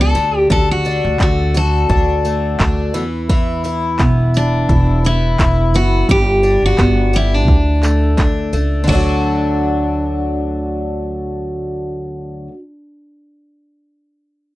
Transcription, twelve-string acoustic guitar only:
0.00 0.14 B2 medium
0.00 0.23 B3 medium
0.00 0.85 D4 medium
0.00 1.54 F#4 medium
0.15 0.49 D3 medium
0.50 3.02 D3 medium
0.86 1.88 D4 medium
1.20 2.24 A3 medium
1.54 3.02 F#4 medium
1.89 2.58 D4 medium
2.25 3.02 A3 medium
2.60 3.02 D4 medium
2.94 3.28 E3 medium
3.29 6.09 E3 medium
3.65 4.68 E4 medium
3.99 5.04 B3 medium
4.69 5.38 E4 medium
5.05 5.73 B3 medium
5.40 6.17 E4 medium
5.75 6.17 B3 medium
6.09 7.56 G2 medium
6.43 8.17 D4 medium
6.78 7.56 B3 medium
7.13 7.56 G4 medium
7.83 8.53 A3 medium
8.18 8.92 D4 medium
8.53 8.90 A3 medium
8.84 12.47 D3 medium
8.84 12.51 F#3 medium
8.90 12.53 A3 medium
8.90 12.56 D4 medium
8.95 12.58 F#4 medium

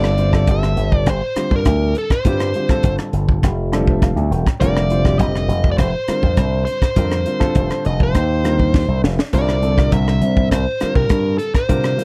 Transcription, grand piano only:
0.00 0.11 D3 medium
0.00 0.11 G3 medium
0.00 0.11 C4 medium
0.00 0.11 F4 medium
0.00 0.11 A4 medium
0.18 0.30 D3 medium
0.18 0.30 G3 soft
0.18 0.30 C4 medium
0.18 0.30 F4 soft
0.18 0.30 C5 medium
0.32 1.10 D3 medium
0.32 1.10 G3 medium
0.32 1.10 C4 medium
0.32 1.11 F4 medium
0.32 1.11 A4 medium
1.36 2.03 D3 medium
1.36 2.03 G3 soft
1.36 2.03 C4 soft
1.36 2.03 F4 medium
1.36 2.03 G4 medium
2.26 2.48 D3 medium
2.26 2.48 G3 medium
2.26 2.48 C4 medium
2.26 2.48 F4 medium
2.26 2.48 G4 medium
2.55 2.66 D3 medium
2.55 2.66 G3 soft
2.55 2.66 C4 medium
2.55 2.66 F4 medium
2.55 2.66 G4 medium
2.69 3.47 D3 medium
2.69 3.47 G3 medium
2.69 3.47 C4 medium
2.69 3.47 F4 medium
2.69 3.47 A4 medium
3.72 4.39 D3 medium
3.72 4.39 G3 medium
3.72 4.39 C4 medium
3.72 4.39 F4 medium
3.72 4.39 A4 medium
3.72 3.86 D5 medium
3.88 4.01 E5 medium
4.03 4.30 F5 medium
4.31 4.59 G5 medium
4.61 4.83 D3 medium
4.61 4.84 G3 medium
4.61 4.83 C4 medium
4.61 4.83 F4 medium
4.61 4.84 A#4 medium
4.91 5.02 D3 medium
4.91 5.02 G3 medium
4.91 5.02 C4 medium
4.91 5.02 F4 medium
4.91 5.02 C5 medium
5.05 5.83 D3 medium
5.05 5.83 G3 medium
5.05 5.83 C4 medium
5.05 5.83 F4 medium
5.05 5.83 G4 medium
6.08 6.75 D3 medium
6.08 6.75 G3 soft
6.08 6.75 C4 medium
6.08 6.75 F4 medium
6.08 6.75 A#4 medium
6.96 7.19 D3 medium
6.96 7.19 G3 medium
6.96 7.19 C4 medium
6.96 7.19 F4 medium
6.96 7.19 A#4 medium
7.26 7.37 D3 medium
7.26 7.37 G3 soft
7.26 7.38 C4 medium
7.26 7.38 F4 medium
7.26 7.38 A#4 medium
7.40 8.18 D3 medium
7.40 8.18 G3 medium
7.40 8.18 C4 medium
7.40 8.18 F4 medium
7.40 8.18 A4 medium
8.44 9.11 D3 medium
8.44 9.11 G3 medium
8.44 9.11 C4 soft
8.44 9.11 F4 medium
8.44 9.11 A#4 medium
9.33 9.55 D3 medium
9.33 9.55 G3 medium
9.33 9.55 C4 medium
9.33 9.56 F4 medium
9.33 9.56 A#4 medium
9.62 9.73 D3 medium
9.62 9.74 G3 medium
9.62 9.74 C4 medium
9.62 9.74 F4 medium
9.62 9.74 A4 medium
9.77 10.55 D3 medium
9.77 10.55 G3 medium
9.77 10.55 C4 medium
9.77 10.55 F4 medium
9.77 10.55 A#4 medium
10.81 11.47 D3 medium
10.81 11.48 G3 medium
10.81 11.48 C4 medium
10.81 11.48 F4 medium
10.81 11.48 A#4 medium
11.69 11.91 D3 medium
11.69 11.91 G3 medium
11.69 11.92 C4 medium
11.69 11.92 F4 medium
11.69 11.92 A#4 medium
11.97 12.04 D3 medium
11.97 12.04 G3 medium
11.97 12.04 C4 soft
11.97 12.04 F4 medium
11.97 12.04 A#4 medium

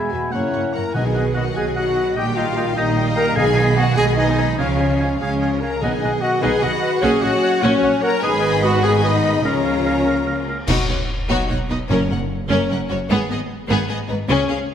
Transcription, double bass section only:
0.11 0.19 E2 medium
0.33 0.41 F#2 soft
0.54 0.62 F#2 soft
0.75 0.83 F#2 soft
0.96 1.50 B1 medium
1.57 2.10 B1 medium
2.16 2.69 A#1 medium
2.77 3.30 A#1 medium
3.37 3.90 B1 medium
3.97 4.51 B1 medium
4.58 5.13 C#2 medium
5.20 5.75 C#2 medium
5.82 5.90 B1 medium
6.03 6.11 B1 medium
6.43 6.51 B1 medium
6.63 6.71 B1 medium
7.03 7.11 A#1 medium
7.23 7.31 A#1 medium
7.63 7.71 A#1 loud
7.83 7.91 A#1 medium
8.23 9.41 G#1 medium
9.45 10.48 C#2 medium
10.68 10.76 B1 medium
10.89 10.97 B1 medium
11.29 11.37 B1 medium
11.49 11.57 B1 medium
11.70 11.78 B1 medium
11.89 11.97 F#1 loud
12.10 12.18 F#1 medium
12.50 12.58 F#1 medium
12.71 12.78 F#1 medium
12.90 12.98 F#1 medium
13.10 13.18 G#1 loud
13.30 13.38 G#1 medium
13.70 13.78 G#1 loud
13.90 13.98 G#1 medium
14.10 14.18 G#1 medium
14.31 14.38 C#2 loud
14.50 14.58 C#2 medium

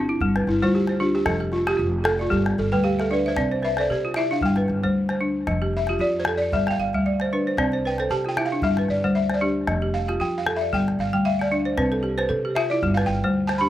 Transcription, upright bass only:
0.00 0.18 G1 medium
0.21 0.45 G1 medium
0.47 0.61 G1 medium
0.63 1.23 D2 medium
1.26 1.75 F1 medium
1.79 2.28 F1 loud
2.32 2.56 G1 medium
2.58 2.72 G1 medium
2.73 3.33 D2 medium
3.38 3.86 C2 loud
3.90 4.38 C3 medium
4.43 4.66 G1 medium
4.69 4.82 G1 medium
4.84 5.43 D2 medium
5.47 5.96 F1 loud
5.99 6.48 F2 loud
6.52 6.76 G1 medium
6.79 6.92 G1 medium
6.94 7.54 D2 medium
7.57 8.06 C2 loud
8.10 8.58 C3 medium
8.62 8.86 G1 medium
8.89 9.02 G1 medium
9.04 9.64 D2 medium
9.68 10.16 F1 loud
10.20 10.68 F2 medium
10.73 10.97 G1 medium
10.99 11.12 G1 medium
11.14 11.74 D2 medium
11.78 12.26 C2 loud
12.30 12.78 C3 loud
12.82 13.06 G1 medium
13.08 13.21 G1 medium
13.22 13.69 D2 medium

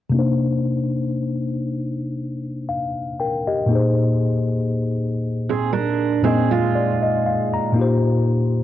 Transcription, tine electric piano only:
0.10 3.64 C3 medium
0.10 3.65 A#3 medium
0.14 3.66 D4 medium
0.14 3.67 D#4 medium
0.19 2.66 C5 medium
2.69 3.17 F5 medium
3.20 3.46 A#4 medium
3.20 3.45 G5 medium
3.47 3.95 G4 soft
3.47 3.95 D#5 medium
3.66 6.18 A#2 medium
3.66 6.19 A#3 medium
3.70 6.20 D#4 medium
3.70 6.21 G#4 medium
3.75 6.23 C5 medium
6.23 7.71 A#2 medium
6.23 7.73 A#3 soft
6.23 7.75 D#4 soft
6.23 7.77 G#4 soft
6.27 7.01 D#5 medium
6.75 7.00 D5 medium
7.03 7.24 D#5 medium
7.26 7.51 F5 medium
7.54 8.23 A#5 medium
7.72 8.63 A#2 medium
7.72 8.63 A#3 medium
7.72 8.63 D#4 medium
7.78 8.63 F4 medium
7.78 8.63 G4 medium
7.78 8.63 C5 medium

